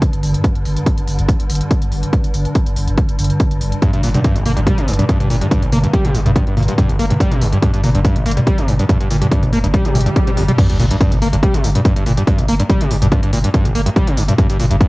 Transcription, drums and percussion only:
0.02 kick, closed hi-hat
0.13 closed hi-hat
0.23 open hi-hat
0.34 closed hi-hat
0.44 kick, closed hi-hat
0.55 closed hi-hat
0.65 open hi-hat
0.77 closed hi-hat
0.86 kick, closed hi-hat
0.98 closed hi-hat
1.08 open hi-hat
1.19 closed hi-hat
1.29 kick, closed hi-hat
1.40 closed hi-hat
1.50 open hi-hat
1.55 closed hi-hat
1.61 closed hi-hat
1.71 kick, closed hi-hat
1.82 closed hi-hat
1.92 open hi-hat
2.03 closed hi-hat
2.13 kick, closed hi-hat
2.24 closed hi-hat
2.34 open hi-hat
2.45 closed hi-hat
2.55 kick, closed hi-hat
2.66 closed hi-hat
2.76 open hi-hat
2.88 closed hi-hat
2.98 kick, closed hi-hat
3.09 closed hi-hat
3.19 open hi-hat
3.24 closed hi-hat
3.30 closed hi-hat
3.40 kick, closed hi-hat
3.51 closed hi-hat
3.61 open hi-hat
3.72 closed hi-hat
3.82 kick, closed hi-hat
3.93 closed hi-hat, mid tom
4.03 open hi-hat
4.14 closed hi-hat, mid tom
4.24 kick, closed hi-hat
4.36 closed hi-hat
4.46 open hi-hat, mid tom
4.57 closed hi-hat
4.67 kick, closed hi-hat, mid tom
4.78 closed hi-hat
4.88 open hi-hat
4.93 closed hi-hat
4.99 closed hi-hat, mid tom
5.09 kick, closed hi-hat
5.20 closed hi-hat, mid tom
5.30 open hi-hat
5.41 closed hi-hat
5.51 kick, closed hi-hat, mid tom
5.62 closed hi-hat
5.72 open hi-hat, mid tom
5.84 closed hi-hat
5.93 kick, closed hi-hat
6.05 closed hi-hat, mid tom
6.15 open hi-hat
6.26 closed hi-hat, mid tom
6.36 kick, closed hi-hat
6.47 closed hi-hat
6.57 open hi-hat, mid tom
6.63 closed hi-hat
6.68 closed hi-hat
6.78 kick, closed hi-hat, mid tom
6.89 closed hi-hat
6.99 open hi-hat
7.10 closed hi-hat, mid tom
7.20 kick, closed hi-hat
7.32 closed hi-hat, mid tom
7.41 open hi-hat
7.53 closed hi-hat
7.62 kick, closed hi-hat, mid tom
7.74 closed hi-hat
7.84 open hi-hat, mid tom
7.95 closed hi-hat
8.05 kick, closed hi-hat
8.16 closed hi-hat, mid tom
8.26 open hi-hat
8.31 closed hi-hat
8.37 closed hi-hat, mid tom
8.47 kick, closed hi-hat
8.58 closed hi-hat
8.68 open hi-hat, mid tom
8.79 closed hi-hat
8.89 kick, closed hi-hat, mid tom
9.01 closed hi-hat
9.11 open hi-hat
9.22 closed hi-hat, mid tom
9.31 kick, closed hi-hat
9.43 closed hi-hat, mid tom
9.53 open hi-hat
9.64 closed hi-hat
9.74 kick, closed hi-hat, mid tom
9.85 closed hi-hat
9.95 open hi-hat, mid tom
10.01 closed hi-hat
10.06 closed hi-hat
10.16 kick, closed hi-hat
10.27 closed hi-hat, mid tom
10.37 open hi-hat
10.48 closed hi-hat, mid tom
10.58 kick, closed hi-hat, crash
10.69 closed hi-hat
10.79 open hi-hat, mid tom
10.91 closed hi-hat
11.01 kick, closed hi-hat
11.12 closed hi-hat, mid tom
11.22 open hi-hat
11.33 closed hi-hat
11.43 kick, closed hi-hat, mid tom
11.54 closed hi-hat
11.64 open hi-hat
11.75 closed hi-hat, mid tom
11.85 kick, closed hi-hat
11.96 closed hi-hat
12.06 open hi-hat, mid tom
12.17 closed hi-hat
12.27 kick, closed hi-hat
12.38 closed hi-hat, mid tom
12.48 open hi-hat
12.60 closed hi-hat
12.69 kick, closed hi-hat, mid tom
12.81 closed hi-hat
12.91 open hi-hat
13.02 closed hi-hat, mid tom
13.12 kick, closed hi-hat
13.23 closed hi-hat
13.33 open hi-hat, mid tom
13.44 closed hi-hat
13.54 kick, closed hi-hat
13.65 closed hi-hat, mid tom
13.75 open hi-hat
13.86 closed hi-hat
13.96 kick, closed hi-hat, mid tom
14.07 closed hi-hat
14.17 open hi-hat
14.29 closed hi-hat, mid tom
14.38 kick, closed hi-hat
14.50 closed hi-hat
14.60 open hi-hat, mid tom
14.71 closed hi-hat
14.81 kick, closed hi-hat

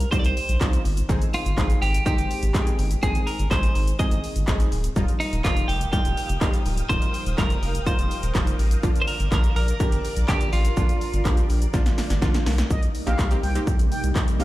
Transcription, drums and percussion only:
0.00 closed hi-hat, shaker
0.12 kick, shaker
0.24 closed hi-hat, shaker
0.37 open hi-hat, shaker
0.49 closed hi-hat, shaker
0.61 kick, clap, shaker
0.73 closed hi-hat, shaker
0.85 open hi-hat, shaker
0.97 closed hi-hat, shaker
1.09 kick, shaker
1.22 closed hi-hat, shaker
1.34 open hi-hat, shaker
1.45 closed hi-hat, shaker
1.58 kick, clap, shaker
1.70 closed hi-hat, shaker
1.82 open hi-hat, shaker
1.94 closed hi-hat, shaker
2.06 kick, shaker
2.18 closed hi-hat, shaker
2.31 open hi-hat, shaker
2.43 closed hi-hat, shaker
2.54 kick, clap, shaker
2.67 closed hi-hat, shaker
2.79 open hi-hat, shaker
2.91 closed hi-hat, shaker
3.03 kick, shaker
3.15 closed hi-hat, shaker
3.27 open hi-hat, shaker
3.39 closed hi-hat, shaker
3.51 kick, clap, shaker
3.63 closed hi-hat, shaker
3.75 open hi-hat, shaker
3.87 closed hi-hat, shaker
3.99 kick, shaker
4.11 closed hi-hat, shaker
4.24 open hi-hat, shaker
4.36 closed hi-hat, shaker
4.48 kick, clap, shaker
4.60 closed hi-hat, shaker
4.72 open hi-hat, shaker
4.84 closed hi-hat, shaker
4.96 kick, shaker
5.08 closed hi-hat, shaker
5.21 open hi-hat, shaker
5.33 closed hi-hat, shaker
5.45 kick, clap, shaker
5.57 closed hi-hat, shaker
5.69 open hi-hat, shaker
5.81 closed hi-hat, shaker
5.93 kick, shaker
6.05 closed hi-hat, shaker
6.17 open hi-hat, shaker
6.29 closed hi-hat, shaker
6.41 kick, clap, shaker
6.54 closed hi-hat, shaker
6.66 open hi-hat, shaker
6.78 closed hi-hat, shaker
6.90 kick, shaker
7.02 closed hi-hat, shaker
7.14 open hi-hat, shaker
7.26 closed hi-hat, shaker
7.38 kick, clap, shaker
7.50 closed hi-hat, shaker
7.63 open hi-hat, shaker
7.75 closed hi-hat, shaker
7.86 kick, shaker
7.99 closed hi-hat, shaker
8.11 open hi-hat, shaker
8.23 closed hi-hat, shaker
8.35 kick, clap, shaker
8.47 closed hi-hat, shaker
8.59 open hi-hat, shaker
8.71 closed hi-hat, shaker
8.83 kick, shaker
8.96 closed hi-hat, shaker
9.08 open hi-hat, shaker
9.20 closed hi-hat, shaker
9.32 kick, clap, shaker
9.44 closed hi-hat, shaker
9.56 open hi-hat, shaker
9.68 closed hi-hat, shaker
9.80 kick, shaker
9.92 closed hi-hat, shaker
10.05 open hi-hat, shaker
10.16 closed hi-hat, shaker
10.28 kick, clap, shaker
10.41 closed hi-hat, shaker
10.53 open hi-hat, shaker
10.65 closed hi-hat, shaker
10.77 kick, shaker
10.89 closed hi-hat, shaker
11.01 open hi-hat, shaker
11.13 closed hi-hat, shaker
11.25 kick, clap, shaker
11.37 closed hi-hat, shaker
11.50 open hi-hat, shaker
11.62 closed hi-hat, shaker
11.74 kick, snare, shaker
11.86 snare, closed hi-hat, shaker
11.98 snare, open hi-hat, shaker
12.10 snare, closed hi-hat, shaker
12.22 kick, snare, shaker
12.34 snare, closed hi-hat, shaker
12.46 snare, open hi-hat, shaker
12.58 snare, closed hi-hat, shaker
12.70 kick, shaker
12.83 closed hi-hat, shaker
12.95 open hi-hat, shaker
13.07 closed hi-hat, shaker
13.19 kick, clap, shaker
13.31 closed hi-hat, shaker
13.43 open hi-hat, shaker
13.55 closed hi-hat, shaker
13.67 kick, shaker
13.79 closed hi-hat, shaker
13.92 open hi-hat, shaker
14.04 closed hi-hat, shaker
14.16 kick, clap, shaker
14.28 closed hi-hat, shaker
14.40 open hi-hat, shaker

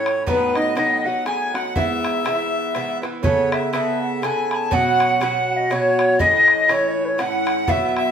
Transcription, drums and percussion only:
0.06 bodhran
0.27 bodhran
0.56 bodhran
0.77 bodhran
1.26 bodhran
1.55 bodhran
1.76 bodhran
2.05 bodhran
2.26 bodhran
2.75 bodhran
3.03 bodhran
3.24 bodhran
3.52 bodhran
3.74 bodhran
4.23 bodhran
4.51 bodhran
4.72 bodhran
5.00 bodhran
5.21 bodhran
5.71 bodhran
5.99 bodhran
6.20 bodhran
6.48 bodhran
6.69 bodhran
7.19 bodhran
7.47 bodhran
7.68 bodhran
7.97 bodhran

